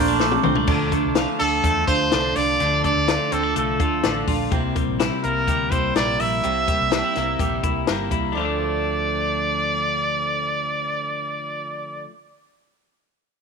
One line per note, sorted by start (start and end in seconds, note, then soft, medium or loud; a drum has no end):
0.00 0.37 A#1 medium
0.00 0.68 A#2 loud
0.00 0.20 F3 soft
0.00 0.20 A3 soft
0.00 0.20 A3 medium
0.00 0.19 D4 medium
0.00 0.20 D4 loud
0.00 1.16 F4 medium
0.04 0.44 D4 medium
0.04 0.20 C6 loud
0.20 0.44 A#2 medium
0.20 0.44 F3 medium
0.20 0.43 A3 medium
0.20 0.42 D4 medium
0.20 0.30 D6 medium
0.20 snare medium
0.31 0.65 D6 medium
0.31 high tom medium
0.43 0.65 C2 loud
0.43 0.67 F3 medium
0.43 0.67 A3 medium
0.43 0.56 C4 medium
0.43 0.67 D4 medium
0.43 mid tom medium
0.55 0.73 D4 medium
0.55 floor tom loud
0.67 0.98 D2 loud
0.67 0.91 D3 medium
0.67 0.92 F3 medium
0.67 0.92 A3 medium
0.67 0.90 D4 medium
0.67 kick loud
0.67 crash medium
0.91 1.14 F3 soft
0.91 1.14 A3 medium
0.91 1.15 D4 medium
0.91 kick medium
0.91 closed hi-hat medium
1.05 1.25 C2 medium
1.15 1.39 D3 medium
1.15 1.39 F3 medium
1.15 1.39 A3 medium
1.15 1.37 D4 medium
1.15 1.87 F4 medium
1.15 snare loud
1.15 closed hi-hat medium
1.39 1.61 D2 medium
1.39 1.63 F3 soft
1.39 1.63 A3 soft
1.39 1.63 D4 medium
1.39 1.84 A4 medium
1.39 closed hi-hat medium
1.63 1.84 E2 medium
1.63 1.87 D3 medium
1.63 1.88 F3 medium
1.63 1.88 A3 medium
1.63 1.87 D4 medium
1.63 kick medium
1.63 closed hi-hat medium
1.87 2.08 D2 medium
1.87 2.11 F3 soft
1.87 2.11 A3 soft
1.87 2.12 D4 medium
1.87 2.35 F4 medium
1.87 2.37 C5 medium
1.87 kick medium
1.87 closed hi-hat medium
2.11 2.32 C2 medium
2.11 2.35 D3 medium
2.11 2.35 F3 medium
2.11 2.36 A3 medium
2.11 2.34 D4 medium
2.11 snare medium
2.11 closed hi-hat medium
2.35 2.56 C2 medium
2.35 2.59 F3 soft
2.35 2.60 A3 soft
2.35 2.59 D4 soft
2.35 3.07 F4 medium
2.35 2.84 D5 medium
2.35 open hi-hat medium
2.60 2.90 D2 medium
2.60 2.84 D3 medium
2.60 2.84 F3 medium
2.60 2.84 A3 medium
2.60 2.83 D4 medium
2.60 closed hi-hat medium
2.84 3.07 F3 soft
2.84 3.08 A3 soft
2.84 3.07 D4 soft
2.84 3.35 D5 loud
2.84 kick medium
2.84 closed hi-hat medium
2.96 3.16 D2 medium
3.07 3.31 D3 medium
3.07 3.32 F3 medium
3.07 3.32 A3 medium
3.07 3.30 D4 medium
3.07 3.79 F4 medium
3.07 snare medium
3.07 closed hi-hat medium
3.31 3.52 D2 medium
3.31 3.55 F3 soft
3.31 3.56 A3 soft
3.31 3.43 C4 medium
3.31 3.55 D4 soft
3.31 3.56 A4 medium
3.31 closed hi-hat medium
3.43 4.02 D4 medium
3.56 3.76 C2 medium
3.56 3.79 D3 medium
3.56 3.80 F3 medium
3.56 3.80 A3 medium
3.56 3.79 D4 medium
3.56 4.24 A4 medium
3.56 closed hi-hat medium
3.80 4.00 D2 medium
3.80 4.03 F3 soft
3.80 4.03 A3 soft
3.80 4.04 D4 soft
3.80 4.27 F4 medium
3.80 kick medium
3.80 closed hi-hat medium
4.03 4.24 A1 medium
4.03 4.27 D3 medium
4.03 4.28 F3 medium
4.03 4.27 A3 medium
4.03 4.26 D4 medium
4.03 snare medium
4.03 closed hi-hat medium
4.27 4.48 A#1 medium
4.27 4.52 F3 soft
4.27 4.52 A3 soft
4.27 4.51 D4 medium
4.27 4.56 F4 medium
4.27 kick medium
4.27 open hi-hat medium
4.52 4.82 C2 medium
4.52 4.75 C3 medium
4.52 4.76 G3 medium
4.52 4.75 A#3 medium
4.52 4.74 E4 medium
4.52 kick loud
4.52 closed hi-hat medium
4.75 4.98 G3 soft
4.75 4.98 A#3 soft
4.75 4.99 E4 soft
4.75 kick medium
4.75 closed hi-hat medium
4.88 5.08 A#1 medium
4.99 5.23 C3 medium
4.99 5.23 G3 medium
4.99 5.23 A#3 medium
4.99 5.22 E4 medium
4.99 snare medium
4.99 closed hi-hat medium
5.23 5.44 C2 loud
5.23 5.46 G3 soft
5.23 5.47 A#3 soft
5.23 5.47 E4 medium
5.23 5.73 A#4 medium
5.23 closed hi-hat medium
5.47 5.68 D2 medium
5.47 5.71 C3 soft
5.47 5.71 G3 medium
5.47 5.71 A#3 medium
5.47 5.69 E4 medium
5.47 kick medium
5.47 closed hi-hat medium
5.70 5.92 C2 medium
5.70 5.94 G3 soft
5.70 5.95 A#3 soft
5.70 5.95 E4 soft
5.70 5.95 C5 medium
5.70 kick medium
5.70 closed hi-hat medium
5.95 6.16 A#1 medium
5.95 6.19 C3 medium
5.95 6.19 G3 medium
5.95 6.19 A#3 medium
5.95 6.17 E4 medium
5.95 6.22 D5 medium
5.95 snare medium
5.95 closed hi-hat medium
6.19 6.40 A#1 medium
6.19 6.42 G3 soft
6.19 6.43 A#3 soft
6.19 6.43 E4 soft
6.19 7.88 E5 medium
6.19 open hi-hat medium
6.43 6.65 C2 medium
6.43 6.67 C3 medium
6.43 6.67 G3 medium
6.43 6.68 A#3 medium
6.43 6.67 E4 medium
6.43 closed hi-hat medium
6.68 6.90 G3 soft
6.68 6.91 A#3 soft
6.68 6.92 E4 soft
6.68 kick medium
6.68 closed hi-hat medium
6.81 7.00 C2 medium
6.91 7.15 C3 medium
6.91 7.15 G3 medium
6.91 7.15 A#3 medium
6.91 7.05 D4 medium
6.91 7.14 E4 medium
6.91 snare medium
6.91 closed hi-hat medium
7.05 7.62 E4 soft
7.15 7.37 C2 medium
7.15 7.38 G3 soft
7.15 7.39 A#3 soft
7.15 7.39 E4 medium
7.15 snare soft
7.15 closed hi-hat medium
7.39 7.60 A#1 medium
7.39 7.63 C3 medium
7.39 7.63 G3 medium
7.39 7.64 A#3 medium
7.39 7.62 E4 medium
7.39 kick medium
7.39 closed hi-hat medium
7.64 7.84 C2 medium
7.64 7.87 G3 soft
7.64 7.88 A#3 medium
7.64 7.88 E4 medium
7.64 kick medium
7.64 closed hi-hat medium
7.87 8.08 G1 medium
7.87 8.12 C3 medium
7.87 8.11 G3 medium
7.87 8.10 A#3 medium
7.87 8.09 E4 medium
7.87 snare medium
7.87 closed hi-hat medium
8.10 8.32 C2 medium
8.10 8.35 G3 soft
8.10 8.35 A#3 soft
8.10 8.35 E4 medium
8.10 kick medium
8.10 closed hi-hat medium
8.32 12.05 D2 medium
8.32 12.06 D3 medium
8.32 12.08 F3 medium
8.32 12.04 D5 medium
8.37 12.10 A3 medium
8.37 12.12 D4 medium
8.45 12.18 D4 medium